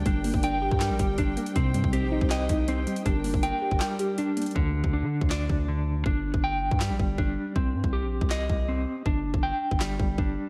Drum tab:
HH |x---o---x-------x---x---x---x-x-|x---x---x-------x---x---x---x-x-|x---o---x-------x---x---x---xxxx|--------------------------------|
CP |----------------x---------------|----------------x---------------|----------------x---------------|----------------x---------------|
SD |----------------o---------------|----------------o---------------|----------------o---------------|----------------o---------------|
BD |o-----o-------o-----o---o-------|o-----o-------o-----o-----------|o-----o-------o-----------------|o-----o-------o-----o-----------|

HH |--------------------------------|--------------------------------|--------------------------------|
CP |----------------x---------------|----------------x---------------|----------------x---------------|
SD |----------------o---------------|----------------o---------------|----------------o---------------|
BD |o-----o-------o-----o---o-------|o-----o-------o-----o-----------|o-----o-------o-----o---o-------|